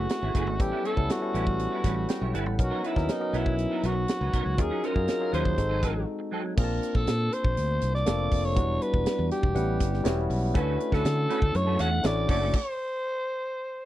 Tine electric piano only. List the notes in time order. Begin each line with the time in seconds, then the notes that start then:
Already playing: A3 B3 C#4 E4 G#4
0.59 G3 B3 C#4 E4 A4
0.96 G3 B3 C#4 E4 A4
1.21 G3 B3 C#4 E4 A4
1.84 B5
2.09 G5
2.34 F#5
2.59 F#3 B3 C#4 D#4 A#4
2.96 F#3 B3 C#4 D#4 A#4
3.20 F#3 B3 C#4 A#4 D#5
4.58 F#3 C#4 D#4 F4 A#4
4.95 F#3 C#4 D#4 F4 G#4
5.20 F#3 C#4 D#4 F4 G#4
5.58 G#3 C4 D#4 F#4 A4
6.57 A#3 C4 D4 F4 G#4
6.64 A5
8.06 A#3 C4 D4 F4 A4
8.55 G3 B3 D4 E4 F#4
9.54 G3 B3 C#4 E4 F#5
10.04 G3 B3 C#4 E4 F#4
10.54 A3 C#4 D4 E4 F4
10.61 F#4
12.03 A3 C#4 D4 E4 F#4